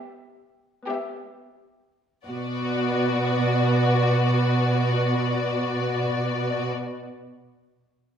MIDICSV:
0, 0, Header, 1, 5, 480
1, 0, Start_track
1, 0, Key_signature, 2, "minor"
1, 0, Tempo, 1260504
1, 338, Tempo, 1382488
1, 818, Time_signature, 3, 2, 24, 8
1, 818, Tempo, 1219512
1, 3143, End_track
2, 0, Start_track
2, 0, Title_t, "Violin section"
2, 0, Program_c, 0, 48
2, 0, Note_on_c, 0, 76, 47
2, 225, Note_off_c, 0, 76, 0
2, 340, Note_on_c, 0, 76, 35
2, 716, Note_off_c, 0, 76, 0
2, 819, Note_on_c, 0, 74, 32
2, 2560, Note_off_c, 0, 74, 0
2, 3143, End_track
3, 0, Start_track
3, 0, Title_t, "Violin section"
3, 0, Program_c, 1, 48
3, 0, Note_on_c, 1, 67, 46
3, 225, Note_off_c, 1, 67, 0
3, 336, Note_on_c, 1, 67, 41
3, 713, Note_off_c, 1, 67, 0
3, 817, Note_on_c, 1, 66, 35
3, 2559, Note_off_c, 1, 66, 0
3, 3143, End_track
4, 0, Start_track
4, 0, Title_t, "Viola section"
4, 0, Program_c, 2, 48
4, 0, Note_on_c, 2, 59, 41
4, 225, Note_off_c, 2, 59, 0
4, 341, Note_on_c, 2, 59, 41
4, 716, Note_off_c, 2, 59, 0
4, 819, Note_on_c, 2, 59, 35
4, 2560, Note_off_c, 2, 59, 0
4, 3143, End_track
5, 0, Start_track
5, 0, Title_t, "Cello section"
5, 0, Program_c, 3, 48
5, 818, Note_on_c, 3, 47, 36
5, 2559, Note_off_c, 3, 47, 0
5, 3143, End_track
0, 0, End_of_file